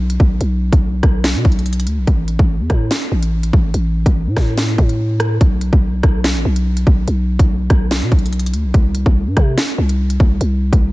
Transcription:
Already playing: 808-style bass B1
0.10 closed hi-hat
0.20 808-style bass B1, kick
0.41 808-style bass B1, closed hi-hat
0.73 808-style bass B1, kick, closed hi-hat
1.03 808-style bass B1, kick, cross-stick, closed hi-hat
1.24 snare, closed hi-hat
1.35 808-style bass B2
1.45 808-style bass B1, kick, closed hi-hat
1.52 closed hi-hat
1.59 closed hi-hat
1.66 closed hi-hat
1.73 closed hi-hat
1.80 closed hi-hat
1.87 808-style bass D2, closed hi-hat
1.98 808-style bass B1
2.07 808-style bass A1, kick, closed hi-hat
2.28 closed hi-hat
2.39 808-style bass A1, kick
2.60 808-style bass E2
2.70 808-style bass A2, kick, cross-stick, closed hi-hat
2.91 snare, closed hi-hat
3.12 808-style bass A1
3.23 closed hi-hat
3.43 closed hi-hat
3.53 808-style bass A1, kick
3.74 808-style bass A1, closed hi-hat
4.06 808-style bass A1, kick, closed hi-hat
4.27 808-style bass A2
4.37 808-style bass A2, kick, cross-stick, snare, closed hi-hat
4.58 snare, closed hi-hat
4.78 808-style bass A2, kick, closed hi-hat
4.89 closed hi-hat
5.20 cross-stick, closed hi-hat
5.41 808-style bass B1, kick, closed hi-hat
5.61 closed hi-hat
5.73 808-style bass B1, kick
6.03 808-style bass B1, kick, cross-stick, closed hi-hat
6.24 snare, closed hi-hat
6.35 808-style bass A1
6.45 808-style bass B1
6.56 closed hi-hat
6.77 closed hi-hat
6.87 808-style bass B1, kick
7.08 808-style bass B1, closed hi-hat
7.39 808-style bass B1, kick, closed hi-hat
7.70 808-style bass B1, kick, cross-stick, closed hi-hat
7.91 snare, closed hi-hat
8.02 808-style bass B2
8.12 808-style bass B1, kick, closed hi-hat
8.19 closed hi-hat
8.26 closed hi-hat
8.33 closed hi-hat
8.39 closed hi-hat
8.46 closed hi-hat
8.53 808-style bass D2, closed hi-hat
8.65 808-style bass B1
8.74 808-style bass C2, kick, closed hi-hat
8.95 closed hi-hat
9.06 808-style bass C2, kick
9.27 808-style bass G2
9.37 808-style bass C3, kick, cross-stick, closed hi-hat
9.58 snare, closed hi-hat
9.78 808-style bass C2
9.89 closed hi-hat
10.10 closed hi-hat
10.20 808-style bass C2, kick
10.41 808-style bass C2, closed hi-hat
10.73 808-style bass C2, kick, closed hi-hat

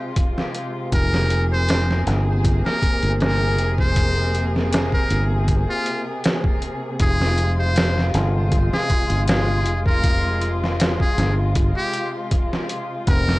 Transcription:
Already playing: string section C3 G#3 F4
0.16 kick, closed hi-hat
0.38 snare
0.55 closed hi-hat
0.92 fingered electric bass F1, string section A#3 G#4, muted trumpet A#4, kick, closed hi-hat
1.14 snare
1.30 closed hi-hat
1.53 muted trumpet C5
1.69 snare, closed hi-hat
1.91 snare
2.07 fingered electric bass G1, snare, closed hi-hat
2.44 kick, closed hi-hat
2.66 muted trumpet A#4, snare
2.82 kick, closed hi-hat
3.03 fingered electric bass G1, closed hi-hat
3.20 muted trumpet A#4, snare, closed hi-hat
3.58 fingered electric bass F1, closed hi-hat
3.78 muted trumpet C5, kick
3.96 kick, closed hi-hat
4.35 closed hi-hat
4.56 snare
4.72 snare, closed hi-hat
4.92 muted trumpet A#4, kick
5.10 fingered electric bass G1, closed hi-hat
5.48 kick, closed hi-hat
5.70 muted trumpet F4
5.86 closed hi-hat
6.24 snare, closed hi-hat
6.44 kick
6.62 closed hi-hat
6.99 fingered electric bass F1, string section G#3 F4, muted trumpet G#4, kick, closed hi-hat
7.21 snare
7.38 closed hi-hat
7.59 muted trumpet C5
7.76 snare, closed hi-hat
7.98 snare
8.14 fingered electric bass G1, snare, closed hi-hat
8.51 kick, closed hi-hat
8.73 muted trumpet G#4, snare
8.90 kick, closed hi-hat
9.10 fingered electric bass G1, closed hi-hat
9.28 muted trumpet G#4, snare, closed hi-hat
9.66 fingered electric bass F1, closed hi-hat
9.86 muted trumpet A#4, kick
10.03 kick, closed hi-hat
10.41 closed hi-hat
10.63 snare
10.80 snare, closed hi-hat
11.00 muted trumpet G#4, kick
11.18 fingered electric bass G1, snare, closed hi-hat
11.55 kick, closed hi-hat
11.77 muted trumpet G4
11.93 closed hi-hat
12.31 kick, closed hi-hat
12.53 snare
12.69 closed hi-hat
13.07 fingered electric bass F1, string section A#2 G#3 C4, muted trumpet A#4, kick, closed hi-hat
13.29 snare

